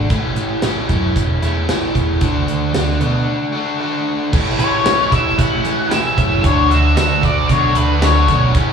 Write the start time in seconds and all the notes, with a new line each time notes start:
Already playing: A3 F#4
0.10 A1 A2 E3 A3 C#4 E4, kick, closed hi-hat
0.36 A1, closed hi-hat
0.62 A1 E3 A3 C#4 E4, snare, closed hi-hat, tambourine
0.89 F#2 A3 C#4 E4, kick, closed hi-hat
1.16 E1, kick, closed hi-hat
1.42 E2 A3 C#4 E4, closed hi-hat
1.67 A1 A2 E3 A3 C#4 E4, snare, closed hi-hat, tambourine
1.95 E2, kick, closed hi-hat
2.20 D2 D3 A3 D4 F#4, kick, closed hi-hat
2.47 D2, closed hi-hat
2.73 D2 D3 A3 D4 F#4, snare, closed hi-hat, tambourine
2.99 B2 A3 D4 F#4, closed hi-hat
3.52 D4 F#4
3.56 A3
3.78 D3 A3 D4 F#4
4.31 A1 A2 E3 A3 C#4 E4, kick, crash
4.58 A1 A3 C#4 E4 C#5, closed hi-hat
4.84 A1 E3 A3 C#4 E4, snare, closed hi-hat, tambourine
5.11 A1 A2 E3 A3 C#4 E4 E5, kick, closed hi-hat
5.37 A1 E3 A3 C#4 E4 F#5, kick, closed hi-hat
5.63 A1 E3 A3 C#4 E4, closed hi-hat
5.88 A1 A2 E3 A3 C#4 E4 E5, snare, closed hi-hat, tambourine
6.15 F#1 A3 C#4 E4, kick, closed hi-hat
6.41 D2 D3 A3 D4 F#4, kick, closed hi-hat
6.45 C#5
6.68 D2 A3 D4 F#4, closed hi-hat
6.72 E5
6.94 D2 D3 A3 D4 F#4 E5, snare, closed hi-hat, tambourine
7.21 D2 A3 D4 F#4 D5, kick, closed hi-hat
7.25 D3
7.48 B1 D3 A3 D4 F#4 C#5, kick, closed hi-hat
7.74 D2 D3 A3 D4 F#4 B4, closed hi-hat
8.00 D2 D3 A3 D4 F#4, snare, closed hi-hat, tambourine
8.04 C#5
8.26 B1 A3 C#4 D4 F#4, kick, closed hi-hat
8.54 A1 A2 E3 A3 C#4 E4, kick, closed hi-hat